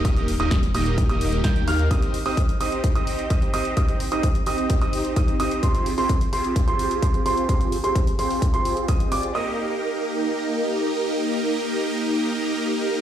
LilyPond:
<<
  \new Staff \with { instrumentName = "Grand piano" } { \time 4/4 \key ees \major \tempo 4 = 129 ees'''8 r16 ees'''16 r8 ees'''8. ees'''8. g'''8 f'''8 | ees'''8 r16 ees'''16 r8 ees'''8. ees'''8. ees'''8 ees'''8 | ees'''8 r16 ees'''16 r8 ees'''8. ees'''8. ees'''8 ees'''8 | c'''8 r16 c'''16 r8 c'''8. c'''8. c'''8 c'''8 |
c'''8 r16 c'''16 r8 c'''8. c'''8. ees'''8 d'''8 | ees'''1~ | ees'''1 | }
  \new Staff \with { instrumentName = "Supersaw synth" } { \time 4/4 \key ees \major <bes ees' g' bes'>8 r16 <bes ees' g' bes' ees''>16 r8 <bes ees' g' bes' ees''>8. <bes ees' g' bes' ees''>8. <bes ees' g' bes' g''>8 <bes ees' g' bes' f''>8 | <c' ees' g' c'' ees''>8 r16 <c' ees' g' c'' ees''>16 r8 <c' ees' g' c'' ees''>8. <c' ees' g' c'' ees''>8. <c' ees' g' c''>8 <c' ees' g' c'' ees''>8 | <c' ees' g' c''>8 r16 <c' ees' g' c'' ees''>16 r8 <c' ees' g' c'' ees''>8. <c' ees' g' c'' ees''>8. <c' ees' g' c''>8 <c' ees' g' c'' ees''>8 | <c' f' g' aes' c''>8 r16 <c' f' g' aes' c''>16 r8 <c' f' g' aes' c''>8. <c' f' g' aes' c''>8. <c' f' g' aes' c''>8 <c' f' g' aes' c''>8 |
<g' aes' c''>8 r16 <c' f' g' aes' c''>16 r8 <c' f' g' aes' c''>8. <c' f' g' aes' c''>8. <c' g' ees''>8 <c' f' g' aes' d''>8 | <bes ees' g' bes' ees''>1~ | <bes ees' g' bes' ees''>1 | }
  \new Staff \with { instrumentName = "Detuned saw bass" } { \clef bass \time 4/4 \key ees \major ees,,8. ees,,8. ees,,8. ees,,8. ees,8 ees,8 | r1 | r1 | r1 |
r1 | r1 | r1 | }
  \new DrumStaff \with { instrumentName = "Drums" } \drummode { \time 4/4 <hh bd>16 hh16 hho16 hh16 <hh bd sn>16 hh16 hho16 hh16 <hh bd>16 hh16 hho16 hh16 <hh bd sn>16 hh16 hho16 hh16 | <hh bd>16 hh16 hho16 hho16 <hh bd>16 hh16 hho16 hh16 <hh bd>16 hh16 hho16 hh16 <hh bd>16 hh16 hho16 hh16 | <hh bd>16 hh16 hho16 hh16 <hh bd>16 hh16 hho16 hh16 <hh bd>16 hh16 hho16 hh16 <hh bd>16 hh16 hho16 hh16 | <hh bd>16 hh16 hho16 hho16 <hh bd>16 hh16 hho16 hh16 <hh bd>16 hh16 hho16 hh16 <hh bd>16 hh16 hho16 hh16 |
<hh bd>16 hh16 hho16 hh16 <hh bd>16 hh16 hho16 hho16 <hh bd>16 hh16 hho16 hh16 <hh bd>16 hh16 hho16 hh16 | r4 r4 r4 r4 | r4 r4 r4 r4 | }
>>